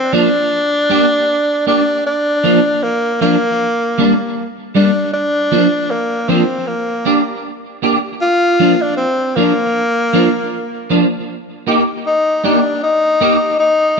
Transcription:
0.00 C4
0.12 F3 A#3 D4
0.90 A#3 D4 G4
1.67 A#3 D4 G4
2.07 D4
2.43 F3 A#3 D4
2.83 A#3
3.21 F3 A#3 D4
3.98 G3 A#3 D4
4.75 G3 A#3 D4
5.14 D4
5.51 F3 A#3 D4
5.91 A#3
6.28 F3 A#3 C4 D4
6.67 A#3
7.05 A#3 D4 G4
7.82 A#3 D4 G4
8.21 F4
8.59 F3 A#3 D4
8.82 D4
8.97 C4
9.36 F3 A#3 D4
10.13 F3 A#3 D4
10.90 F3 A#3 D4
11.67 A#3 D#4 G4
12.07 D#4
12.44 A#3 D4 D#4 G4
12.83 D#4
13.21 A#3 D#4 G4
13.60 D#4

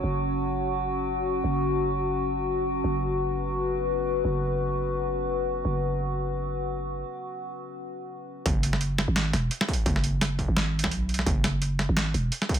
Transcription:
Already playing: C#4 F#4 C#5
0.04 F#1
1.44 F#1
2.70 B4
2.84 F#1
4.25 F#1
5.65 F#1
8.46 F#1, kick, closed hi-hat
8.63 closed hi-hat
8.73 snare
8.81 closed hi-hat
8.98 snare, closed hi-hat
9.08 G#1
9.16 snare, closed hi-hat
9.33 E1, snare, closed hi-hat
9.51 closed hi-hat
9.61 snare
9.68 kick, closed hi-hat
9.73 closed hi-hat
9.86 F#1, kick, closed hi-hat
9.96 snare
10.04 closed hi-hat
10.21 snare, closed hi-hat
10.39 kick, closed hi-hat
10.48 G#1
10.57 snare, closed hi-hat
10.79 closed hi-hat
10.84 kick, snare
10.91 B1, closed hi-hat
11.09 closed hi-hat
11.14 closed hi-hat
11.19 snare
11.26 F#1, kick, closed hi-hat
11.44 snare, closed hi-hat
11.62 closed hi-hat
11.79 snare, closed hi-hat
11.89 G#1
11.97 snare, closed hi-hat
12.14 E1, closed hi-hat
12.32 closed hi-hat
12.42 snare
12.49 kick, closed hi-hat
12.54 closed hi-hat

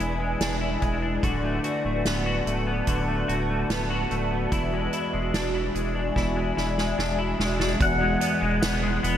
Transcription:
Already playing: E2 G#3 D4 E4 B4 D5 G#5
0.00 E1 E4, closed hi-hat
0.20 G#3
0.40 E1 D4, snare, closed hi-hat
0.61 E4
0.82 E1 G#3, kick, closed hi-hat
1.02 D4
1.22 D1 D3 F#4 B4 A5, kick, closed hi-hat
1.43 A3
1.64 F#4, closed hi-hat
1.85 D1 A3
2.05 D1 B3, snare, closed hi-hat
2.26 F#4
2.46 D1 A3, closed hi-hat
2.67 B3
2.87 D1 D3 F#4, kick, closed hi-hat
3.08 A3
3.28 D1 F#4, closed hi-hat
3.49 A3
3.69 D1 B3, snare, closed hi-hat
3.90 F#4
4.11 D1 A3, closed hi-hat
4.31 B3
4.52 E1 E2 E4 E5 G#5, kick, closed hi-hat
4.73 G#3
4.93 E4, closed hi-hat
5.13 E1 G#3
5.33 E1 D4, snare, closed hi-hat
5.54 E4
5.75 E1 G#3, closed hi-hat
5.95 D4
6.16 E1 E2 E4, kick, snare
6.36 G#3
6.57 E1 E4, snare
6.78 G#3, snare
6.98 E1 D4, snare
7.19 E4
7.39 E1 G#3, snare
7.59 D4, snare
7.80 E1 E2 E3 E4 G#4 B4 F#5, kick, closed hi-hat
8.01 G#3
8.21 B3, closed hi-hat
8.41 E1 G#3
8.62 E1 B3, snare, closed hi-hat, tambourine
8.82 G#3
9.03 E1 B3, closed hi-hat

